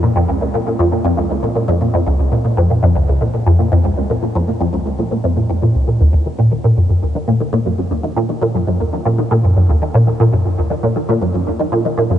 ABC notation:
X:1
M:4/4
L:1/16
Q:1/4=118
K:Bbm
V:1 name="Synth arpeggio sound" clef=bass
B,, F,, D,, D,, B,, B,, F,, B,, F,, D,, D,, B,, B,, F,, B,, F,, | D,, D,, B,, B,, F,, B,, F,, D,, D,, B,, B,, F,, B,, F,, D,, D,, | B,, B,, F,, B,, F,, D,, D,, B,, B,, F,, B,, F,, B,, D,, B,, E,, | [K:Ebm] E,, E, B,, E, B,, G,, G,, E,, E, B,, E, B,, G,, G,, E,, E, |
B,, E, B,, G,, G,, E,, E, B,, E, B,, G,, G,, E,, E, B,, E, | B,, G,, G,, E,, E, B,, E, B,, G,, G,, E,, E, B,, E, B,, G,, |]